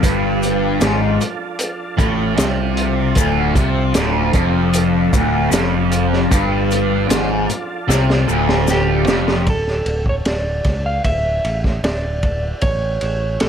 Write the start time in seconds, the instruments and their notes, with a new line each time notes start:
Already playing: tonewheel organ F3 D4 F4 A4
0.02 picked electric bass G1, distorted electric guitar G2, kick, closed hi-hat, shaker
0.43 closed hi-hat, shaker
0.81 picked electric bass G#1, distorted electric guitar G#2, snare, closed hi-hat, shaker
1.21 closed hi-hat, shaker
1.59 closed hi-hat, shaker
1.98 picked electric bass A1, distorted electric guitar A2, kick, closed hi-hat, shaker
2.38 picked electric bass C2, distorted electric guitar C3, snare, closed hi-hat, shaker
2.77 closed hi-hat
3.15 picked electric bass D1, distorted electric guitar D2, kick, closed hi-hat, shaker
3.55 picked electric bass C2, distorted electric guitar C3, kick, closed hi-hat, shaker
3.94 picked electric bass D1, distorted electric guitar D2, snare, closed hi-hat, shaker
4.33 picked electric bass F1, distorted electric guitar F2, kick, closed hi-hat, shaker
4.74 closed hi-hat, shaker
5.13 picked electric bass D1, distorted electric guitar D2, kick, closed hi-hat, shaker
5.51 picked electric bass F1, distorted electric guitar F2, snare, closed hi-hat, shaker
5.92 closed hi-hat, shaker
6.13 snare
6.31 picked electric bass G1, distorted electric guitar G2, kick, closed hi-hat, shaker
6.71 closed hi-hat, shaker
7.09 picked electric bass G#1, distorted electric guitar G#2, snare, closed hi-hat, shaker
7.50 closed hi-hat, shaker
7.88 picked electric bass C2, distorted electric guitar C3, snare, shaker
8.10 snare
8.26 picked electric bass D1, distorted electric guitar D2, shaker
8.49 snare
8.68 electric slide guitar G4, snare, shaker
9.06 picked electric bass F1, distorted electric guitar F2, snare, shaker
9.28 snare
9.47 picked electric bass D1, electric slide guitar A4, kick, ride
9.68 snare
9.86 picked electric bass D1, ride
10.06 electric slide guitar C#5, kick
10.25 picked electric bass D1, electric slide guitar D5, snare, ride
10.64 picked electric bass C#2, kick, snare, ride
10.86 electric slide guitar F5
11.04 picked electric bass D1, electric slide guitar E5, kick, ride
11.45 picked electric bass A1, ride
11.64 kick, snare
11.84 picked electric bass D1, electric slide guitar D5, snare, ride
12.23 kick, ride
12.61 picked electric bass A1, electric slide guitar C#5, kick, ride
13.01 picked electric bass A1, ride
13.40 picked electric bass A1, electric slide guitar A4, snare, ride